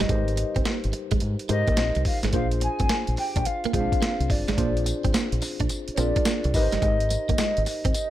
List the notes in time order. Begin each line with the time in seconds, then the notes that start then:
Already playing: D#4 G4 A#4 B4 C5 D#5
0.00 G1 G3
0.09 G#1 G#3 D#4 G4 A#4 C5, kick, closed hi-hat
0.28 closed hi-hat
0.37 muted clean electric guitar stroke, closed hi-hat
0.56 G1 C4, kick, closed hi-hat
0.65 A#3, snare, closed hi-hat
0.84 G#1, closed hi-hat
0.93 muted clean electric guitar stroke, closed hi-hat
1.11 G#1 G#3, kick, closed hi-hat
1.20 G#2, muted clean electric guitar stroke, closed hi-hat
1.39 closed hi-hat
1.49 G#2 G#3 D#4 G4 A#4 C5 D#5, closed hi-hat
1.67 G#1 A#3, kick, closed hi-hat
1.77 A#1 C4, snare, closed hi-hat
1.95 C2, muted clean electric guitar stroke, closed hi-hat
2.05 F5, kick, open hi-hat
2.23 G#1 G#3, snare, closed hi-hat
2.33 A#1 A#3 D4 F4 G#4 C5 F5, kick, closed hi-hat
2.51 closed hi-hat
2.61 G#5, muted clean electric guitar stroke, closed hi-hat
2.80 G#1 C4, kick, closed hi-hat
2.89 A#3, snare, closed hi-hat
3.07 A#1, closed hi-hat
3.17 G5, muted clean electric guitar stroke, open hi-hat
3.36 A#1 D4, kick, closed hi-hat
3.45 F5, muted clean electric guitar stroke, closed hi-hat
3.64 A#3, muted fingered electric bass stroke, closed hi-hat
3.73 A#1 G#3 C4 F4 G#4 C5 F5, kick, closed hi-hat
3.80 D4
3.92 kick, closed hi-hat
4.02 A#3, snare, closed hi-hat
4.20 C2, closed hi-hat
4.30 G1 D5, muted clean electric guitar stroke, kick, open hi-hat
4.48 G#1 G#3, snare, closed hi-hat
4.57 A#1 A#3 D4 F4 G#4 C5, kick, closed hi-hat
4.77 closed hi-hat
4.86 muted clean electric guitar stroke, closed hi-hat, tambourine
5.04 G#1 C4, kick, closed hi-hat
5.13 A#3, muted fingered electric bass stroke, snare, closed hi-hat, tambourine
5.32 A#1, closed hi-hat
5.42 muted clean electric guitar stroke, open hi-hat, tambourine
5.60 A#1 D4, kick, closed hi-hat
5.69 muted clean electric guitar stroke, closed hi-hat, tambourine
5.88 muted fingered electric bass stroke, closed hi-hat
5.94 A#1 C4 D4 C#5, closed hi-hat, tambourine
5.98 F4 G#4 A#4 D5
6.16 D4, kick, closed hi-hat
6.25 A#3, snare, closed hi-hat, tambourine
6.44 C2, muted clean electric guitar stroke, closed hi-hat
6.54 G#1 D#4 G4 A#4 B4 D#5, kick, open hi-hat, tambourine
6.62 C5
6.72 G1 G3, snare, closed hi-hat
6.82 G#1 G#3, kick, closed hi-hat
7.00 closed hi-hat
7.10 muted clean electric guitar stroke, closed hi-hat, tambourine
7.29 G1 A#3, kick, closed hi-hat
7.38 G#3, snare, closed hi-hat, tambourine
7.57 G#1, closed hi-hat
7.66 D#5, muted clean electric guitar stroke, open hi-hat, tambourine
7.85 G#1 C4, kick, closed hi-hat
7.94 muted clean electric guitar stroke, closed hi-hat, tambourine